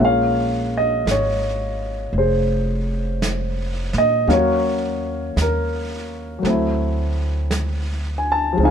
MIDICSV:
0, 0, Header, 1, 4, 480
1, 0, Start_track
1, 0, Key_signature, -5, "minor"
1, 0, Tempo, 1073345
1, 1918, Time_signature, 4, 2, 24, 8
1, 3893, End_track
2, 0, Start_track
2, 0, Title_t, "Grand piano"
2, 0, Program_c, 0, 0
2, 0, Control_c, 0, 64, 127
2, 0, Note_on_c, 0, 56, 41
2, 0, Note_on_c, 0, 58, 40
2, 0, Note_on_c, 0, 61, 38
2, 0, Note_on_c, 0, 65, 47
2, 2, Control_c, 0, 64, 0
2, 21, Note_on_c, 0, 77, 75
2, 23, Note_on_c, 0, 73, 50
2, 86, Control_c, 0, 64, 127
2, 345, Note_off_c, 0, 77, 0
2, 346, Note_on_c, 0, 75, 69
2, 491, Note_off_c, 0, 73, 0
2, 493, Note_off_c, 0, 75, 0
2, 497, Note_on_c, 0, 73, 63
2, 974, Note_on_c, 0, 72, 55
2, 980, Note_on_c, 0, 68, 38
2, 982, Note_off_c, 0, 73, 0
2, 1428, Note_off_c, 0, 72, 0
2, 1781, Note_on_c, 0, 75, 74
2, 1907, Note_off_c, 0, 58, 0
2, 1911, Note_off_c, 0, 61, 0
2, 1911, Note_off_c, 0, 68, 0
2, 1913, Note_on_c, 0, 54, 48
2, 1914, Note_on_c, 0, 58, 48
2, 1916, Note_off_c, 0, 56, 0
2, 1916, Note_off_c, 0, 75, 0
2, 1917, Note_on_c, 0, 61, 48
2, 1917, Note_on_c, 0, 77, 54
2, 1919, Note_off_c, 0, 65, 0
2, 1924, Control_c, 0, 64, 0
2, 1937, Note_on_c, 0, 73, 72
2, 1946, Note_on_c, 0, 66, 57
2, 2011, Control_c, 0, 64, 127
2, 2389, Note_off_c, 0, 73, 0
2, 2422, Note_on_c, 0, 70, 58
2, 2850, Note_off_c, 0, 54, 0
2, 2856, Note_on_c, 0, 54, 47
2, 2872, Note_off_c, 0, 70, 0
2, 2873, Note_off_c, 0, 66, 0
2, 2873, Note_on_c, 0, 57, 47
2, 2876, Note_off_c, 0, 58, 0
2, 2877, Note_off_c, 0, 61, 0
2, 2877, Note_off_c, 0, 77, 0
2, 2883, Control_c, 0, 64, 0
2, 2891, Note_on_c, 0, 60, 47
2, 2906, Note_on_c, 0, 64, 51
2, 2970, Control_c, 0, 64, 127
2, 3658, Note_on_c, 0, 80, 62
2, 3692, Note_off_c, 0, 80, 0
2, 3720, Note_on_c, 0, 81, 74
2, 3813, Note_on_c, 0, 53, 51
2, 3826, Note_off_c, 0, 54, 0
2, 3831, Note_on_c, 0, 56, 47
2, 3834, Note_off_c, 0, 57, 0
2, 3839, Note_off_c, 0, 60, 0
2, 3842, Control_c, 0, 64, 0
2, 3846, Note_on_c, 0, 60, 50
2, 3851, Note_off_c, 0, 64, 0
2, 3859, Note_off_c, 0, 81, 0
2, 3862, Note_on_c, 0, 63, 57
2, 3869, Note_on_c, 0, 77, 56
2, 3870, Note_on_c, 0, 80, 78
2, 3893, Note_off_c, 0, 53, 0
2, 3893, Note_off_c, 0, 56, 0
2, 3893, Note_off_c, 0, 60, 0
2, 3893, Note_off_c, 0, 63, 0
2, 3893, Note_off_c, 0, 77, 0
2, 3893, Note_off_c, 0, 80, 0
2, 3893, End_track
3, 0, Start_track
3, 0, Title_t, "Upright bass"
3, 0, Program_c, 1, 32
3, 0, Note_on_c, 1, 34, 63
3, 458, Note_off_c, 1, 34, 0
3, 472, Note_on_c, 1, 32, 59
3, 937, Note_off_c, 1, 32, 0
3, 951, Note_on_c, 1, 29, 68
3, 1743, Note_off_c, 1, 29, 0
3, 1761, Note_on_c, 1, 46, 54
3, 1905, Note_off_c, 1, 46, 0
3, 1911, Note_on_c, 1, 39, 65
3, 2377, Note_off_c, 1, 39, 0
3, 2398, Note_on_c, 1, 39, 59
3, 2859, Note_off_c, 1, 39, 0
3, 2875, Note_on_c, 1, 38, 62
3, 3817, Note_off_c, 1, 38, 0
3, 3835, Note_on_c, 1, 37, 70
3, 3893, Note_off_c, 1, 37, 0
3, 3893, End_track
4, 0, Start_track
4, 0, Title_t, "Drums"
4, 479, Note_on_c, 9, 25, 32
4, 479, Note_on_c, 9, 38, 34
4, 479, Note_on_c, 9, 44, 46
4, 524, Note_off_c, 9, 38, 0
4, 524, Note_off_c, 9, 44, 0
4, 958, Note_off_c, 9, 25, 0
4, 958, Note_on_c, 9, 25, 28
4, 1441, Note_off_c, 9, 25, 0
4, 1441, Note_on_c, 9, 25, 29
4, 1441, Note_on_c, 9, 38, 36
4, 1441, Note_on_c, 9, 44, 51
4, 1485, Note_off_c, 9, 38, 0
4, 1485, Note_off_c, 9, 44, 0
4, 1759, Note_on_c, 9, 38, 23
4, 1803, Note_off_c, 9, 38, 0
4, 1921, Note_off_c, 9, 25, 0
4, 1921, Note_on_c, 9, 25, 27
4, 1921, Note_on_c, 9, 38, 22
4, 1966, Note_off_c, 9, 38, 0
4, 2402, Note_off_c, 9, 25, 0
4, 2402, Note_on_c, 9, 25, 27
4, 2402, Note_on_c, 9, 38, 37
4, 2402, Note_on_c, 9, 44, 42
4, 2446, Note_off_c, 9, 38, 0
4, 2446, Note_off_c, 9, 44, 0
4, 2883, Note_off_c, 9, 25, 0
4, 2883, Note_on_c, 9, 25, 30
4, 2883, Note_on_c, 9, 38, 24
4, 2927, Note_off_c, 9, 38, 0
4, 3357, Note_off_c, 9, 25, 0
4, 3357, Note_on_c, 9, 25, 30
4, 3357, Note_on_c, 9, 38, 38
4, 3357, Note_on_c, 9, 44, 44
4, 3402, Note_off_c, 9, 38, 0
4, 3402, Note_off_c, 9, 44, 0
4, 3837, Note_off_c, 9, 25, 0
4, 3837, Note_on_c, 9, 25, 28
4, 3893, Note_off_c, 9, 25, 0
4, 3893, End_track
0, 0, End_of_file